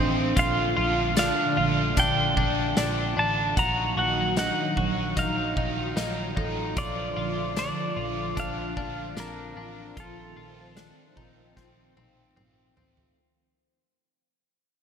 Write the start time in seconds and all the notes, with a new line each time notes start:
Already playing: A1 D#3 C4 D4 F4 A4
0.00 A3
0.36 A#1 A#2 D3 F3 A3 D4 F4 F5, kick, closed hi-hat
0.76 A#1 A3 D4 F4
1.16 A#2 F3 A3 D4 F4 F5, snare, closed hi-hat, tambourine
1.56 A#1 A3 D4 F4
1.96 A#1 F3 A3 D4 F4 G5, kick, closed hi-hat
2.36 A#1 A3 D4 F4, kick
2.76 A#1 A#2 F3 A3 D4 F4, snare, closed hi-hat, tambourine
3.16 A1 A3 D4 F4 A5
3.56 A#1 A#2 D#3 F#3 A#3 D#4 F4 F#4 A#5, kick, closed hi-hat
3.97 A#1 A#3 D#4 F#4 F#5
4.36 A#2 F#3 A#3 D4 D#4 F#5, snare, closed hi-hat, tambourine
4.77 A#1 A#3 D#4 F#4, kick
5.16 A#1 F#3 A#3 D#4 F4 F5, kick, closed hi-hat
5.56 A#1 A#3 D#4 F4, kick
5.96 A#1 A#2 F#3 A#3 D#4 F4, snare, closed hi-hat, tambourine
6.36 A1 A#3 D#4 F4 A4, kick
6.76 A#1 A#2 D3 F3 A3 D4 F4 D5, kick, closed hi-hat
7.16 A#1 A3 D4 F4
7.56 A#2 F3 A3 D4 F4 D5, snare, closed hi-hat, tambourine
7.96 A#1 A3 D4 F4
8.36 A#1 F3 A3 D4 F4 F5, kick, closed hi-hat
8.76 A#1 A3 D4 F4, kick
9.16 A#1 A#2 F3 C4 D4 F4 A#4, snare, closed hi-hat, tambourine
9.56 A1 D4 F4
9.96 A#1 A#2 D#3 A3 C4 F4 A4, kick, closed hi-hat
10.36 A#1 A3 C4 F4
10.76 A#2 D#3 A3 C4 D4 F4, snare, closed hi-hat, tambourine
11.16 A#1 A3 C4 D#4 F4, kick
11.56 A#1 D#3 A3 C4 F4, kick, snare
11.96 A#1 A3 C4 D#4 F4, high tom
12.36 A#1 A#2 D#3 A3 C4 F4, mid tom
12.76 A1 A3 C4 F4, floor tom
12.97 floor tom